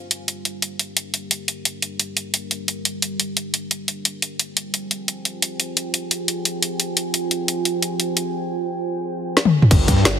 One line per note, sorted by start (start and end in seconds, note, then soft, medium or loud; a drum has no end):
0.00 4.18 G3 medium
0.00 4.18 D4 medium
0.00 4.18 G4 medium
0.00 4.18 A#4 medium
0.11 closed hi-hat medium
0.28 closed hi-hat medium
0.45 closed hi-hat medium
0.62 closed hi-hat medium
0.79 closed hi-hat medium
0.97 closed hi-hat medium
1.14 closed hi-hat medium
1.31 closed hi-hat medium
1.48 closed hi-hat medium
1.65 closed hi-hat medium
1.82 closed hi-hat medium
2.00 closed hi-hat medium
2.17 closed hi-hat medium
2.34 closed hi-hat medium
2.51 closed hi-hat medium
2.68 closed hi-hat medium
2.85 closed hi-hat medium
3.02 closed hi-hat medium
3.20 closed hi-hat medium
3.37 closed hi-hat medium
3.54 closed hi-hat medium
3.71 closed hi-hat medium
3.88 closed hi-hat medium
4.05 closed hi-hat medium
4.22 9.67 F4 medium
4.22 9.67 C5 medium
4.22 9.67 G5 medium
4.22 9.67 G#5 medium
4.22 closed hi-hat medium
4.39 closed hi-hat medium
4.57 closed hi-hat medium
4.74 closed hi-hat medium
4.91 closed hi-hat medium
5.08 closed hi-hat medium
5.25 closed hi-hat medium
5.42 closed hi-hat medium
5.60 closed hi-hat medium
5.77 closed hi-hat medium
5.94 closed hi-hat medium
6.11 closed hi-hat medium
6.28 closed hi-hat medium
6.45 closed hi-hat medium
6.62 closed hi-hat medium
6.80 closed hi-hat medium
6.97 closed hi-hat medium
7.14 closed hi-hat medium
7.31 closed hi-hat medium
7.48 closed hi-hat medium
7.65 closed hi-hat medium
7.82 closed hi-hat medium
8.00 closed hi-hat medium
8.17 closed hi-hat medium
9.37 snare medium
9.45 high tom medium
9.62 mid tom medium
9.71 9.87 G1 medium
9.71 10.19 G3 medium
9.71 10.19 D4 medium
9.71 10.19 G4 medium
9.71 10.19 A#4 medium
9.71 kick loud
9.71 closed hi-hat medium
9.71 crash loud
9.88 10.04 G2 loud
9.88 kick medium
9.88 closed hi-hat medium
9.88 closed hi-hat loud
9.97 snare medium
10.05 10.19 G1 medium
10.05 snare loud
10.05 closed hi-hat medium